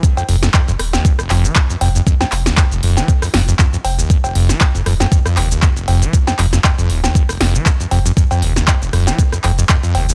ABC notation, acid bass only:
X:1
M:4/4
L:1/16
Q:"Swing 16ths" 1/4=118
K:Cdor
V:1 name="Acid bass" clef=bass
F,, F,, F,, F,, F,, F,, z E,, F,, F,,, F,, F, F,, F,, F,, F,, | F,, F,, z E,, F,, F,,, F,, F, F,, F,, F,, F,, F,, F,, z E,, | F,, F,,, F,, F, F,, F,, F,, F,, F,, F,, E,, E,, F,, F,,, F,, F, | F,, F,, F,, F,, F,, F,, E,, E,, F,, F,,, F,, F, F,, F,, F,, F,, |
F,, F,, E,, E,, F,, F,,, F,, F, F,, F,, F,, F,, F,, F,, E,, E,, |]